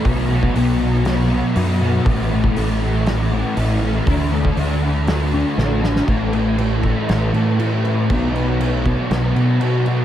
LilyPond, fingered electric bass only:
\new Staff \with { instrumentName = "Fingered electric bass" } { \clef bass \time 4/4 \key b \dorian \tempo 4 = 119 b,,4 b,,2 fis,4 | a,,4 a,,2 a,,4 | d,4 d,2 a,,4 | a,,2 a,,8 a,4. |
b,,2 b,,8 b,4. | }